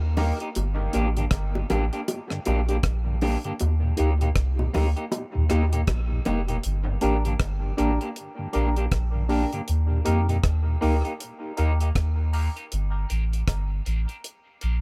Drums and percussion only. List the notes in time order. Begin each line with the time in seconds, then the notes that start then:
0.17 open hi-hat, low bongo
0.40 closed hi-hat
0.55 closed hi-hat, high bongo
0.93 closed hi-hat
1.17 closed hi-hat
1.31 kick, cross-stick, closed hi-hat
1.55 high bongo
1.70 closed hi-hat, high bongo, low bongo
1.93 closed hi-hat
2.08 closed hi-hat, high bongo
2.30 cross-stick
2.45 closed hi-hat, high bongo
2.69 closed hi-hat
2.83 kick, cross-stick, closed hi-hat
3.21 open hi-hat, low bongo
3.44 closed hi-hat
3.59 closed hi-hat, high bongo
3.97 closed hi-hat
4.21 closed hi-hat
4.36 kick, cross-stick, closed hi-hat
4.59 high bongo
4.74 open hi-hat, high bongo, low bongo
4.97 closed hi-hat
5.12 closed hi-hat, high bongo
5.50 cross-stick, closed hi-hat, high bongo
5.73 closed hi-hat
5.87 kick, cross-stick, closed hi-hat, high bongo
6.25 closed hi-hat, low bongo
6.48 closed hi-hat
6.63 closed hi-hat
7.01 closed hi-hat
7.25 closed hi-hat
7.40 kick, cross-stick, closed hi-hat
7.78 closed hi-hat
8.01 closed hi-hat
8.16 closed hi-hat
8.53 closed hi-hat
8.76 closed hi-hat
8.92 kick, cross-stick, closed hi-hat
9.29 open hi-hat
9.53 closed hi-hat
9.68 closed hi-hat
10.06 closed hi-hat
10.29 closed hi-hat
10.44 kick, cross-stick, closed hi-hat
10.82 open hi-hat
11.05 closed hi-hat
11.20 closed hi-hat
11.57 closed hi-hat
11.81 closed hi-hat
11.95 kick, cross-stick, closed hi-hat
12.33 open hi-hat
12.57 closed hi-hat
12.72 closed hi-hat
13.10 closed hi-hat
13.33 closed hi-hat
13.48 kick, cross-stick, closed hi-hat
13.86 closed hi-hat
14.09 closed hi-hat
14.24 closed hi-hat
14.61 closed hi-hat